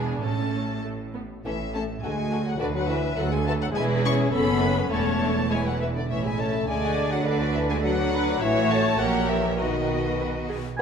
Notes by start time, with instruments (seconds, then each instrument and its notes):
Already playing: double bass section E1, cello section E2, viola section B3 D4, violin section G#4
0.21 double bass section A1, cello section A2, viola section A3 C#4, violin section A4 A5
0.83 viola section A3
1.14 viola section B3
1.45 double bass section A1, cello section A2, french horn section E3, violin section C#4 A4 E5
1.74 french horn section A3, violin section C#4 A4 A5
2.02 cello section D2, double bass section D2, french horn section G#3, viola section F#4, violin section F#4 A4 G#5
2.31 violin section F#4 A4
2.45 french horn section F#3, violin section F#5
2.58 cello section D2, double bass section D2, french horn section D3, violin section F#4 B4 D5, viola section B4
2.73 french horn section F#3, violin section F#5
2.88 french horn section E3, violin section F#4 B4 E5
3.16 cello section D2, double bass section D2, french horn section F#3, violin section F#4 B4 F#5, viola section A4
3.30 french horn section G#3, violin section G#5
3.46 french horn section A3, violin section F#4 B4 A5
3.58 french horn section F#3
3.63 violin section F#5
3.71 double bass section E1, cello section E2, french horn section G#3, violin section E4 B4, viola section G#4
3.76 violin section G#5
4.01 french horn section C#4
4.06 violin section C#6
4.31 double bass section F#1, cello section F#2, french horn section B3, violin section C#4 A4 B5, viola section A4
4.60 viola section B4
4.90 double bass section E1, cello section E2, french horn section A3, violin section C#4 A4 A5, viola section C#5
5.22 violin section D4
5.50 french horn section G#3, violin section E4 B4 G#5, viola section C#5
5.65 french horn section F#3, violin section F#5
5.79 french horn section E3, viola section B4, violin section E5
5.94 french horn section D3, violin section D5
6.09 double bass section A1, cello section A2, french horn section E3, violin section C#4 C#5 E5
6.24 french horn section G#3, violin section E4 E5 G#5
6.39 french horn section A3, violin section C#4 C#5 A5
6.53 violin section E4 E5
6.68 double bass section D2, cello section D3, french horn section G#3, violin section A4 D5 G#5, viola section D5
6.83 violin section F#4 F#5
6.98 violin section A4 D5
7.12 french horn section F#3, violin section F#4 F#5
7.25 french horn section D3, violin section D4 B4 D5, viola section B4
7.41 violin section F#4 D5
7.54 french horn section E3, violin section D4 B4 E5
7.69 french horn section G#3, violin section F#4 D5 G#5
7.83 french horn section F#3, violin section D4 B4 F#5, viola section A4
7.99 violin section F#4 D5
8.12 violin section D4 B4, viola section B4
8.28 violin section F#4 D5
8.40 double bass section A1, cello section A2, french horn section E3, violin section F#4 C#5 E5, viola section C#5
8.70 french horn section A3, violin section A5
8.99 double bass section A#1, cello section A#2, french horn section F#3, violin section G4 C#5 F#5, viola section A#4
9.28 french horn section E3, violin section E5
9.59 double bass section B1, cello section B2, french horn section D#3, violin section F#4 B4 D#5, viola section F#4
10.19 viola section B4
10.50 viola section G#4